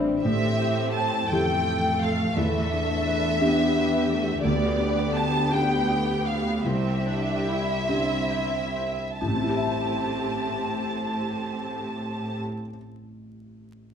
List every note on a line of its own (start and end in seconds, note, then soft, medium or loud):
0.00 0.11 A1 soft
0.00 0.21 A2 soft
0.00 0.24 A2 soft
0.00 0.26 E3 soft
0.00 0.27 E3 soft
0.00 0.23 G3 soft
0.00 0.22 C4 soft
0.00 0.60 C4 soft
0.00 0.24 D4 soft
0.00 0.27 E4 soft
0.00 0.95 G4 soft
0.00 0.26 C5 soft
0.00 0.26 E5 soft
0.23 1.27 A2 soft
0.23 1.28 A2 soft
0.23 2.40 A2 soft
0.23 1.27 C4 soft
0.23 1.27 G4 soft
0.23 0.91 E5 medium
0.61 1.31 C4 soft
0.93 1.66 G4 soft
0.93 1.29 A5 medium
1.31 2.34 F2 soft
1.31 2.33 E3 soft
1.31 3.41 A3 soft
1.31 2.01 C4 soft
1.31 2.33 G4 soft
1.31 2.34 A4 soft
1.31 2.01 G5 medium
1.67 5.15 G4 soft
2.02 2.39 C4 soft
2.02 2.36 F5 soft
2.36 4.40 E2 soft
2.36 4.47 E3 soft
2.36 3.38 A4 soft
2.36 4.44 E5 medium
2.72 3.39 D4 soft
3.06 3.74 B4 soft
3.40 3.74 B3 soft
3.40 4.39 D4 soft
3.40 4.08 D4 soft
3.40 4.40 G4 soft
3.40 4.44 G4 soft
3.75 4.09 B3 soft
3.75 6.68 B4 soft
4.10 4.44 A3 soft
4.10 8.00 D4 soft
4.43 6.64 D2 soft
4.43 6.61 D2 soft
4.43 6.67 D3 soft
4.43 5.51 B3 soft
4.43 6.61 G4 soft
4.43 5.13 D5 medium
4.80 5.51 B3 soft
5.16 5.88 G4 soft
5.16 5.52 A5 medium
5.51 6.63 B3 soft
5.51 6.25 B3 soft
5.51 6.60 D4 soft
5.51 6.61 G4 soft
5.51 6.26 G5 medium
5.89 7.44 G4 soft
6.26 6.68 B3 soft
6.26 6.65 F5 soft
6.64 8.96 C2 soft
6.64 9.17 C2 soft
6.64 9.24 C3 soft
6.64 7.05 C4 soft
6.64 7.85 G4 soft
6.64 9.20 E5 soft
7.05 7.86 C4 soft
7.05 7.46 D4 soft
7.45 7.87 E4 soft
7.45 8.29 G4 soft
7.88 8.75 C4 soft
7.88 8.94 C4 soft
7.88 9.17 D4 soft
7.88 8.94 E4 soft
7.88 9.17 G4 soft
8.30 9.47 G4 soft
8.76 9.33 C4 soft
9.20 12.41 A1 soft
9.20 12.40 A2 soft
9.20 13.11 A2 soft
9.20 12.41 C4 soft
9.20 12.41 G4 soft
9.20 12.39 A5 soft
9.28 12.47 A2 soft
9.28 12.60 A3 soft
9.35 12.54 C4 soft
9.41 12.60 E4 soft
9.41 12.61 E4 soft
9.49 12.68 G4 soft
9.56 12.75 E5 soft
9.56 12.76 E5 soft